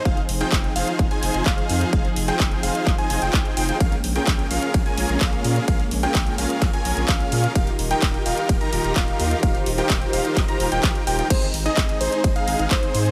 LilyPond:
<<
  \new Staff \with { instrumentName = "Digital synth lead" } { \time 4/4 \key aes \major \tempo 4 = 128 f''16 r8 g''8. f''8. aes''8. f''4 | f''16 r8 g''8. f''8. aes''8 g''8. g''16 g''16 | f''16 r8 g''8. f''8. aes''8. f''4 | f''16 r8 g''8. f''8. aes''8. f''4 |
f''16 r8 g''8. f''8. bes''8. f''4 | f''16 r8 g''8. f''8. bes''8 g''8. g''16 g''16 | c''16 r8 ees''8. c''8. f''8. c''4 | }
  \new Staff \with { instrumentName = "Supersaw synth" } { \time 4/4 \key aes \major <ees' f' aes' c'' f''>16 r8 <ees' f' aes' c'' g''>8. <ees' f' aes' c'' f''>8. <ees' f' aes' c'' aes''>8. <ees' f' aes' c'' f''>4 | <ees' f' aes' c'' f''>16 r8 <ees' f' aes' c'' g''>8. <ees' f' aes' c'' f''>8. <ees' f' aes' c'' aes''>8 <ees' f' aes' c'' g''>8. <ees' f' aes' c'' g''>16 <ees' f' aes' c'' g''>16 | <des' f' aes' bes' f''>16 r8 <des' f' aes' bes' g''>8. <des' f' aes' bes' f''>8. <des' f' aes' bes' aes''>8. <des' f' aes' bes' f''>4 | <des' f' aes' bes' f''>16 r8 <des' f' aes' bes' g''>8. <des' f' aes' bes' f''>8. <des' f' aes' bes' aes''>8. <des' f' aes' bes' f''>4 |
<ees' f' g' bes' f''>16 r8 <ees' f' g' bes' g''>8. <ees' f' g' bes' f''>8. <ees' f' g' bes' bes''>8. <ees' f' g' bes' f''>4 | <ees' f' g' bes' f''>16 r8 <ees' f' g' bes' g''>8. <ees' f' g' bes' f''>8. <ees' f' g' bes' bes''>8 <ees' f' g' bes' g''>8. <ees' f' g' bes' g''>16 <ees' f' g' bes' g''>16 | <ees' aes' c''>16 r8 <ees' aes' ees''>8. <ees' aes' c''>8. <ees' aes' f''>8. <ees' aes' c''>4 | }
  \new Staff \with { instrumentName = "String section" } { \time 4/4 \key aes \major << { aes'1~ | aes'1 | des'1~ | des'1 |
bes'1 | c''1 | ees'1 | } \\ { <f c' ees'>1~ | <f c' ees'>1 | <aes bes>1~ | <aes bes>1 |
<ees ees' f' g'>1~ | <ees ees' f' g'>1 | <aes c'>1 | } >> }
  \new Staff \with { instrumentName = "Sub bass" } { \clef bass \time 4/4 \key aes \major f,,16 r16 f,,16 r16 f,,16 r16 f,,16 r16 f,,16 r16 f,,16 f,,16 f,,16 r16 f,16 r16 | f,,16 r16 f,,16 r16 f,,16 r16 f,,16 r16 f,,16 r16 f,,16 f,,16 c,16 r16 f,,16 r16 | bes,,16 r16 bes,,16 r16 bes,,16 r16 bes,,16 r16 bes,,16 r16 bes,,16 bes,,16 bes,,16 r16 bes,16 r16 | bes,,16 r16 bes,,16 r16 bes,,16 r16 bes,,16 r16 bes,,16 r16 bes,,16 bes,,16 bes,,16 r16 bes,16 r16 |
ees,,16 r16 ees,,16 r16 ees,,16 r16 ees,,16 r16 ees,,16 r16 ees,,16 ees,,16 ees,,16 r16 ees,16 r16 | ees,,16 r16 ees,,16 r16 ees,,16 r16 ees,,16 r16 ees,,16 r16 ees,,16 ees,,16 bes,,16 r16 ees,,16 r16 | aes,,16 r16 aes,,16 r16 aes,,16 r16 aes,,16 r16 aes,,16 r16 aes,,16 aes,,16 aes,,16 r16 aes,16 r16 | }
  \new DrumStaff \with { instrumentName = "Drums" } \drummode { \time 4/4 <hh bd>16 hh16 hho16 hh16 <hc hh bd>16 hh16 hho16 hh16 <hh bd>16 hh16 hho16 hh16 <hc hh bd>16 hh16 hho16 hh16 | <hh bd>16 hh16 hho16 hh16 <hc hh bd>16 hh16 hho16 hh16 <hc hh bd>16 hh16 hho16 hh16 <hc hh bd>16 hh16 hho16 hh16 | <hh bd cymr>16 hh16 hho16 hh16 <hc hh bd cymr>16 hh16 hho16 hh16 <hh bd cymr>16 hh16 hho16 hh16 <hc hh bd cymr>16 hh16 hho16 hh16 | <hh bd cymr>16 hh16 hho16 hh16 <hc hh bd cymr>16 hh16 hho16 hh16 <hc hh bd cymr>16 hh16 hho16 hh16 <hc hh bd cymr>16 hh16 hho16 hh16 |
<hh bd cymr>16 hh16 hho16 hh16 <hc hh bd cymr>16 hh16 hho16 hh16 <hh bd cymr>16 hh16 hho16 hh16 <hc hh bd cymr>16 hh16 hho16 hh16 | <hh bd cymr>16 hh16 hho16 hh16 <hc hh bd cymr>16 hh16 hho16 hh16 <hc hh bd cymr>16 hh16 hho16 hh16 <hc hh bd cymr>16 hh16 hho16 hh16 | <cymc hh bd cymr>16 hh16 hho16 hh16 <hc hh bd cymr>16 hh16 hho16 hh16 <hh bd cymr>16 hh16 hho16 hh16 <hc hh bd cymr>16 hh16 hho16 hh16 | }
>>